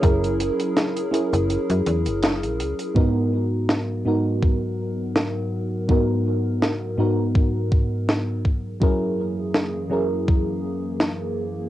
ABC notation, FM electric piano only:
X:1
M:4/4
L:1/8
Q:"Swing 16ths" 1/4=82
K:G#m
V:1 name="FM electric piano"
[CEGA]3 [CEGA]4- [CEGA] | [G,,B,DFA]3 [G,,B,DFA]4- [G,,B,DFA] | [G,,B,DFA]3 [G,,B,DFA]4 z | [F,CEGA]3 [F,CEGA]4- [F,CEGA] |]